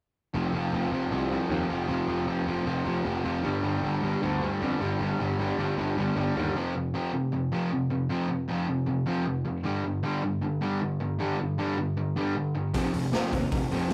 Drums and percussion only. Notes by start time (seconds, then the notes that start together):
12.74 kick, open hi-hat
12.94 open hi-hat
13.13 snare, open hi-hat
13.33 kick, open hi-hat
13.52 kick, open hi-hat
13.71 open hi-hat
13.90 open hi-hat